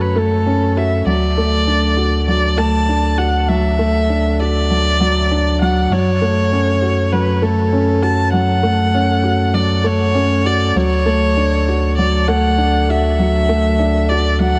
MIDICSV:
0, 0, Header, 1, 4, 480
1, 0, Start_track
1, 0, Tempo, 606061
1, 841, Time_signature, 4, 2, 24, 8
1, 11558, End_track
2, 0, Start_track
2, 0, Title_t, "Violin"
2, 0, Program_c, 0, 40
2, 7, Note_on_c, 0, 71, 84
2, 140, Note_on_c, 0, 69, 88
2, 152, Note_off_c, 0, 71, 0
2, 615, Note_on_c, 0, 76, 86
2, 627, Note_off_c, 0, 69, 0
2, 848, Note_off_c, 0, 76, 0
2, 855, Note_on_c, 0, 74, 97
2, 1776, Note_off_c, 0, 74, 0
2, 1810, Note_on_c, 0, 74, 90
2, 2043, Note_on_c, 0, 81, 101
2, 2055, Note_off_c, 0, 74, 0
2, 2518, Note_on_c, 0, 78, 90
2, 2530, Note_off_c, 0, 81, 0
2, 2757, Note_on_c, 0, 76, 96
2, 2769, Note_off_c, 0, 78, 0
2, 3485, Note_on_c, 0, 74, 102
2, 3497, Note_off_c, 0, 76, 0
2, 4443, Note_off_c, 0, 74, 0
2, 4449, Note_on_c, 0, 78, 83
2, 4690, Note_on_c, 0, 73, 94
2, 4702, Note_off_c, 0, 78, 0
2, 5641, Note_on_c, 0, 71, 86
2, 5653, Note_off_c, 0, 73, 0
2, 5884, Note_on_c, 0, 69, 84
2, 5895, Note_off_c, 0, 71, 0
2, 6357, Note_on_c, 0, 81, 85
2, 6369, Note_off_c, 0, 69, 0
2, 6592, Note_off_c, 0, 81, 0
2, 6597, Note_on_c, 0, 78, 98
2, 7559, Note_on_c, 0, 74, 86
2, 7570, Note_off_c, 0, 78, 0
2, 7805, Note_on_c, 0, 73, 95
2, 7817, Note_off_c, 0, 74, 0
2, 8281, Note_on_c, 0, 74, 89
2, 8293, Note_off_c, 0, 73, 0
2, 8528, Note_on_c, 0, 73, 102
2, 8540, Note_off_c, 0, 74, 0
2, 9479, Note_off_c, 0, 73, 0
2, 9484, Note_on_c, 0, 74, 87
2, 9722, Note_on_c, 0, 78, 96
2, 9734, Note_off_c, 0, 74, 0
2, 10214, Note_on_c, 0, 76, 92
2, 10226, Note_off_c, 0, 78, 0
2, 11160, Note_on_c, 0, 74, 88
2, 11172, Note_off_c, 0, 76, 0
2, 11401, Note_on_c, 0, 78, 98
2, 11413, Note_off_c, 0, 74, 0
2, 11558, Note_off_c, 0, 78, 0
2, 11558, End_track
3, 0, Start_track
3, 0, Title_t, "Felt piano"
3, 0, Program_c, 1, 0
3, 0, Control_c, 1, 64, 127
3, 0, Note_on_c, 1, 54, 68
3, 0, Note_on_c, 1, 57, 89
3, 0, Note_on_c, 1, 61, 62
3, 0, Note_on_c, 1, 66, 64
3, 110, Note_off_c, 1, 54, 0
3, 125, Note_off_c, 1, 57, 0
3, 125, Note_on_c, 1, 57, 86
3, 351, Note_off_c, 1, 57, 0
3, 367, Note_off_c, 1, 61, 0
3, 367, Note_on_c, 1, 61, 69
3, 592, Note_off_c, 1, 61, 0
3, 607, Note_off_c, 1, 66, 0
3, 607, Note_on_c, 1, 66, 64
3, 741, Note_off_c, 1, 66, 0
3, 844, Note_on_c, 1, 54, 74
3, 853, Control_c, 1, 64, 0
3, 979, Note_off_c, 1, 54, 0
3, 1004, Control_c, 1, 64, 127
3, 1091, Note_on_c, 1, 57, 87
3, 1314, Note_off_c, 1, 57, 0
3, 1325, Note_on_c, 1, 62, 65
3, 1551, Note_off_c, 1, 62, 0
3, 1560, Note_on_c, 1, 66, 64
3, 1697, Note_off_c, 1, 66, 0
3, 1806, Note_on_c, 1, 54, 68
3, 2032, Note_off_c, 1, 54, 0
3, 2041, Note_on_c, 1, 57, 84
3, 2269, Note_off_c, 1, 57, 0
3, 2287, Note_on_c, 1, 62, 64
3, 2512, Note_off_c, 1, 62, 0
3, 2515, Note_on_c, 1, 66, 69
3, 2655, Note_off_c, 1, 66, 0
3, 2762, Note_on_c, 1, 54, 76
3, 2899, Note_off_c, 1, 54, 0
3, 3002, Note_on_c, 1, 57, 89
3, 3229, Note_off_c, 1, 57, 0
3, 3244, Note_on_c, 1, 62, 61
3, 3471, Note_off_c, 1, 62, 0
3, 3489, Note_on_c, 1, 66, 62
3, 3622, Note_off_c, 1, 66, 0
3, 3725, Note_on_c, 1, 54, 63
3, 3951, Note_off_c, 1, 54, 0
3, 3963, Note_on_c, 1, 54, 85
3, 4190, Note_off_c, 1, 54, 0
3, 4209, Note_on_c, 1, 62, 65
3, 4433, Note_off_c, 1, 62, 0
3, 4448, Note_on_c, 1, 54, 86
3, 4581, Note_off_c, 1, 54, 0
3, 4687, Note_on_c, 1, 54, 75
3, 4693, Control_c, 1, 64, 0
3, 4821, Note_off_c, 1, 54, 0
3, 4851, Control_c, 1, 64, 127
3, 4924, Note_on_c, 1, 57, 89
3, 5151, Note_off_c, 1, 57, 0
3, 5167, Note_on_c, 1, 61, 63
3, 5392, Note_off_c, 1, 61, 0
3, 5399, Note_on_c, 1, 66, 62
3, 5537, Note_off_c, 1, 66, 0
3, 5644, Note_on_c, 1, 54, 68
3, 5871, Note_off_c, 1, 54, 0
3, 5879, Note_on_c, 1, 57, 86
3, 6108, Note_off_c, 1, 57, 0
3, 6119, Note_on_c, 1, 61, 68
3, 6348, Note_off_c, 1, 61, 0
3, 6356, Note_on_c, 1, 66, 64
3, 6495, Note_off_c, 1, 66, 0
3, 6598, Note_on_c, 1, 54, 75
3, 6737, Note_off_c, 1, 54, 0
3, 6836, Note_on_c, 1, 57, 87
3, 7067, Note_off_c, 1, 57, 0
3, 7084, Note_on_c, 1, 61, 68
3, 7311, Note_off_c, 1, 61, 0
3, 7314, Note_on_c, 1, 66, 63
3, 7454, Note_off_c, 1, 66, 0
3, 7555, Note_on_c, 1, 54, 68
3, 7786, Note_off_c, 1, 54, 0
3, 7795, Note_on_c, 1, 57, 84
3, 8026, Note_off_c, 1, 57, 0
3, 8036, Note_on_c, 1, 61, 68
3, 8267, Note_off_c, 1, 61, 0
3, 8279, Note_on_c, 1, 66, 69
3, 8417, Note_off_c, 1, 66, 0
3, 8523, Note_on_c, 1, 54, 79
3, 8530, Control_c, 1, 64, 0
3, 8659, Note_off_c, 1, 54, 0
3, 8673, Control_c, 1, 64, 127
3, 8759, Note_on_c, 1, 57, 89
3, 8988, Note_off_c, 1, 57, 0
3, 9005, Note_on_c, 1, 62, 66
3, 9231, Note_off_c, 1, 62, 0
3, 9251, Note_on_c, 1, 66, 64
3, 9383, Note_off_c, 1, 66, 0
3, 9490, Note_on_c, 1, 54, 68
3, 9714, Note_off_c, 1, 54, 0
3, 9729, Note_on_c, 1, 57, 94
3, 9953, Note_off_c, 1, 57, 0
3, 9964, Note_on_c, 1, 62, 68
3, 10191, Note_off_c, 1, 62, 0
3, 10208, Note_on_c, 1, 66, 65
3, 10342, Note_off_c, 1, 66, 0
3, 10448, Note_on_c, 1, 54, 77
3, 10581, Note_off_c, 1, 54, 0
3, 10684, Note_on_c, 1, 57, 92
3, 10911, Note_off_c, 1, 57, 0
3, 10924, Note_on_c, 1, 62, 66
3, 11151, Note_off_c, 1, 62, 0
3, 11166, Note_on_c, 1, 66, 65
3, 11301, Note_off_c, 1, 66, 0
3, 11402, Note_on_c, 1, 54, 66
3, 11558, Note_off_c, 1, 54, 0
3, 11558, End_track
4, 0, Start_track
4, 0, Title_t, "Sub bass"
4, 0, Program_c, 2, 38
4, 0, Note_on_c, 2, 42, 86
4, 812, Note_off_c, 2, 42, 0
4, 838, Note_on_c, 2, 38, 80
4, 4656, Note_off_c, 2, 38, 0
4, 4673, Note_on_c, 2, 42, 86
4, 8493, Note_off_c, 2, 42, 0
4, 8519, Note_on_c, 2, 38, 84
4, 11558, Note_off_c, 2, 38, 0
4, 11558, End_track
0, 0, End_of_file